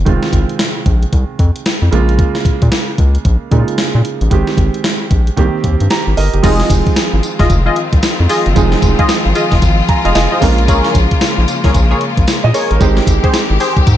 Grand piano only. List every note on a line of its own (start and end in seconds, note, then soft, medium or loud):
0.00 0.08 F4 medium
0.05 1.88 D#3 medium
0.05 1.88 G#3 medium
0.05 1.89 C4 medium
0.05 1.89 F4 medium
1.91 3.48 C#3 medium
1.91 3.48 G#3 medium
1.91 3.49 A#3 medium
1.91 3.49 F4 medium
3.51 4.31 C#3 medium
3.51 4.30 G#3 medium
3.51 4.31 A#3 soft
3.51 3.60 D#4 medium
3.59 4.35 F4 medium
4.30 5.35 D#3 medium
4.30 5.35 G#3 medium
4.30 5.36 C4 medium
4.30 5.36 G4 medium
5.36 6.41 D#3 medium
5.36 6.41 A#3 medium
5.36 6.42 C4 medium
5.36 5.89 G4 medium
5.91 6.16 G4 medium
5.91 6.15 A#5 medium
6.17 6.33 A#4 medium
6.17 6.42 D#5 medium
6.34 6.59 G4 medium
6.43 8.51 F3 medium
6.43 8.52 G#3 medium
6.43 8.52 C4 medium
6.43 8.52 D#4 medium
6.43 8.53 G#4 medium
8.55 10.38 F3 medium
8.55 10.38 G#3 medium
8.55 10.38 C4 medium
8.55 10.39 D#4 medium
8.55 10.39 G#4 medium
9.89 10.04 G#5 medium
9.89 10.14 A#5 medium
10.05 10.15 F5 medium
10.15 10.31 D#5 medium
10.15 10.40 G#5 medium
10.32 10.57 C5 medium
10.41 12.50 G#3 medium
10.41 12.50 A#3 medium
10.41 12.50 C#4 medium
10.41 12.51 F4 medium
10.41 12.25 A#4 medium
10.41 10.67 F5 medium
12.44 12.54 D#5 medium
12.54 12.70 C#5 medium
12.71 12.96 A#4 medium
12.80 13.97 G#3 medium
12.80 13.97 C4 medium
12.80 13.97 D#4 medium
12.80 13.97 G4 medium
12.80 13.97 C5 medium